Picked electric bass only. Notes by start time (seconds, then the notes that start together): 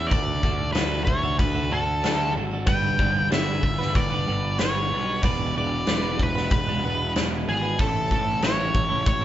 Already playing: E2
0.11 D2
0.43 D2
0.76 D2
1.07 D2
1.40 D2
1.72 D2
2.05 D2
2.36 G#1
2.67 G1
2.99 G1
3.31 G1
3.63 G1
3.95 G1
4.27 G1
4.60 G1
4.92 B1
5.24 E1
5.56 E1
5.88 E1
6.19 E1
6.52 E1
6.84 E1
7.17 E1
7.49 G#1
7.79 A1
8.11 A1
8.44 A1
8.75 A1
9.07 A1